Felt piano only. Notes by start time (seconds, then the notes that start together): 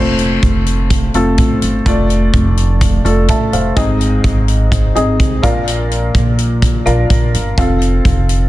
Already playing: A3 C4 F4 C5
1.14 A3 C4 F4 A4
1.86 A3 D4 F4 D5
3.04 A3 D4 F4 A4
3.29 E5 A5
3.53 C5 F5
3.76 G#2 C4 D#4 G#4 D#5
4.95 C4 D#4 G#4 D#5
5.42 A#2 D4 F4 A#4 F5
6.86 D4 F4 A#4 F5
7.58 C4 F4 A4 F5